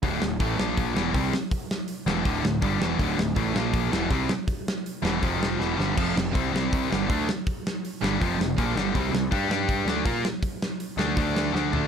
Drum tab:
CC |--------|--------|--------|--------|
HH |o-o-o-o-|o-o-o-o-|o-o-o-o-|o-o-o---|
SD |-o-o-o-o|-o-o-o-o|-o-o-o-o|-o-o-ooo|
FT |--------|--------|--------|--------|
BD |o-o-o-o-|o---o-o-|o-o-o-o-|o---o---|

CC |x-------|--------|--------|--------|
HH |--o-o-o-|o-o-o-o-|o-o-o-o-|o-o-o---|
SD |-o-o-o-o|-o-o-o-o|-o-o-o-o|-o-o-oo-|
FT |--------|--------|--------|-------o|
BD |o-o-o-o-|o---o-o-|o-o-o-o-|o---o---|